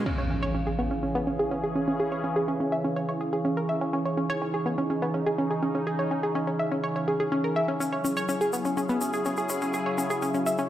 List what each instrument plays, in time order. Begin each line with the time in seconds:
0.06 synth drone C#3 C#4, analog synth pad E3 C#4 G#4, synth arpeggio sound C#4, crash, impact
0.18 synth arpeggio sound C#5
0.30 synth arpeggio sound C#4
0.43 synth arpeggio sound C#5
0.55 synth arpeggio sound C#4
0.67 synth arpeggio sound G#4
0.79 synth arpeggio sound B3
0.91 synth arpeggio sound C#4
1.03 synth arpeggio sound C#4
1.15 synth arpeggio sound B3
1.27 synth arpeggio sound C#4
1.39 synth arpeggio sound G#4
1.51 synth arpeggio sound C#4
1.64 synth arpeggio sound G#4
1.75 synth arpeggio sound C#4
1.88 synth arpeggio sound C#4
2.00 synth arpeggio sound G#4
2.12 synth arpeggio sound C#5
2.24 synth arpeggio sound C#4
2.36 synth arpeggio sound G#4
2.48 synth arpeggio sound C#4
2.60 synth arpeggio sound C#4
2.72 synth arpeggio sound E5
2.84 synth arpeggio sound C#4
2.96 synth arpeggio sound C#5
3.09 synth arpeggio sound C#5
3.21 synth arpeggio sound G#4
3.33 synth arpeggio sound G#4
3.45 synth arpeggio sound C#4
3.57 synth arpeggio sound A#4
3.69 synth arpeggio sound E5
3.81 synth arpeggio sound C#4
3.93 synth arpeggio sound C#4, analog synth pad D#4
4.05 synth arpeggio sound C#5
4.17 synth arpeggio sound C#4
4.30 synth arpeggio sound C#5
4.42 synth arpeggio sound C#4
4.54 synth arpeggio sound G#4
4.66 synth arpeggio sound B3
4.78 synth arpeggio sound C#4
4.90 synth arpeggio sound C#4
5.02 synth arpeggio sound B3
5.14 synth arpeggio sound C#4
5.26 synth arpeggio sound G#4
5.38 synth arpeggio sound C#4
5.51 synth arpeggio sound G#4
5.63 synth arpeggio sound C#4
5.75 synth arpeggio sound C#4
5.87 synth arpeggio sound G#4
5.99 synth arpeggio sound C#5
6.11 synth arpeggio sound C#4
6.23 synth arpeggio sound G#4
6.35 synth arpeggio sound C#4
6.47 synth arpeggio sound C#4
6.59 synth arpeggio sound E5
6.72 synth arpeggio sound C#4
6.84 synth arpeggio sound C#5
6.96 synth arpeggio sound C#5
7.08 synth arpeggio sound G#4
7.20 synth arpeggio sound G#4
7.32 synth arpeggio sound C#4
7.44 synth arpeggio sound A#4
7.56 synth arpeggio sound E5
7.68 synth arpeggio sound C#4
7.80 analog synth pad F#3 E4 G#4, synth arpeggio sound C#4, shaker
7.93 synth arpeggio sound C#5
8.04 synth arpeggio sound C#4, shaker
8.17 synth arpeggio sound C#5, shaker
8.29 synth arpeggio sound C#4, shaker
8.41 synth arpeggio sound G#4, shaker
8.53 synth arpeggio sound B3, shaker
8.65 synth arpeggio sound C#4, shaker
8.77 synth arpeggio sound C#4, shaker
8.89 synth arpeggio sound B3, shaker
9.01 synth arpeggio sound C#4, shaker
9.13 synth arpeggio sound G#4, shaker
9.25 synth arpeggio sound C#4, shaker
9.37 synth arpeggio sound G#4, shaker
9.49 synth arpeggio sound C#4, shaker
9.62 synth arpeggio sound C#4, shaker
9.74 synth arpeggio sound G#4, shaker
9.86 synth arpeggio sound C#5
9.98 synth arpeggio sound C#4, shaker
10.10 synth arpeggio sound G#4, shaker
10.22 synth arpeggio sound C#4, shaker
10.34 synth arpeggio sound C#4, shaker
10.46 synth arpeggio sound E5, shaker
10.58 synth arpeggio sound C#4, shaker